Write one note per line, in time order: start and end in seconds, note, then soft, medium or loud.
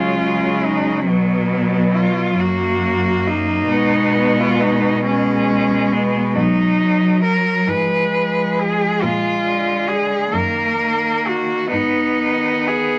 0.00 1.10 C#3 soft
0.00 1.05 F#3 soft
0.00 1.07 G#3 soft
0.00 0.66 F4 medium
0.65 1.07 D#4 soft
1.08 2.38 B2 soft
1.08 2.41 F#3 soft
1.08 3.68 F#3 soft
1.08 1.97 B3 soft
1.95 2.41 F4 medium
2.39 3.69 F#2 soft
2.39 3.73 A#3 medium
2.39 3.28 F#4 soft
3.27 4.41 D#4 medium
3.71 6.33 B2 soft
3.71 5.03 G#3 soft
3.71 5.05 B3 soft
4.40 4.62 F4 medium
4.61 5.05 D#4 medium
5.05 6.35 G#3 soft
5.05 6.35 G#3 medium
5.05 5.94 C#4 medium
5.93 6.37 B3 medium
6.36 7.50 B2 medium
6.36 7.69 F#3 soft
6.36 7.22 D#4 medium
6.82 7.67 F#3 soft
7.24 7.69 A#4 medium
7.67 8.85 G#2 medium
7.67 8.12 F3 soft
7.67 10.31 G#3 medium
7.67 8.61 B4 medium
8.13 9.01 F3 soft
8.59 9.04 G#4 medium
9.02 10.16 A#2 medium
9.02 9.89 F4 medium
9.44 10.30 D3 soft
9.88 10.35 G#4 medium
10.32 11.55 F#2 soft
10.32 10.78 D#3 soft
10.32 11.69 A#3 soft
10.32 11.28 A#4 medium
10.79 11.71 D#3 soft
11.27 11.73 F#4 medium
11.72 12.98 G#2 soft
11.72 12.99 B3 soft
11.72 12.69 D#4 medium
12.19 12.99 D#3 soft
12.68 12.99 G#4 medium